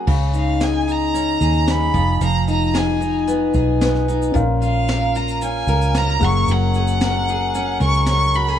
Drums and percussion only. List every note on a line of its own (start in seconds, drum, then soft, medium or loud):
0.07 kick loud
0.07 crash medium
0.34 shaker soft
0.61 snare loud
0.61 shaker medium
0.89 shaker soft
1.15 shaker medium
1.41 shaker soft
1.68 snare loud
1.68 shaker medium
1.94 kick loud
1.94 shaker medium
2.21 shaker medium
2.48 shaker soft
2.75 snare loud
2.75 shaker medium
3.02 shaker soft
3.28 shaker medium
3.54 kick medium
3.54 shaker soft
3.81 snare loud
3.81 shaker medium
3.95 snare soft
4.09 shaker medium
4.22 shaker soft
4.35 kick loud
4.35 shaker medium
4.62 shaker soft
4.88 snare loud
4.88 shaker medium
5.15 shaker soft
5.28 shaker medium
5.42 shaker medium
5.68 shaker soft
5.82 shaker medium
5.95 snare loud
5.95 shaker medium
6.08 snare soft
6.21 kick loud
6.21 shaker medium
6.48 shaker medium
6.74 shaker soft
6.88 shaker medium
7.01 snare loud
7.01 shaker medium
7.28 shaker soft
7.55 shaker medium
7.81 kick medium
7.81 shaker soft
7.94 shaker medium
8.07 snare loud
8.07 shaker medium
8.34 shaker medium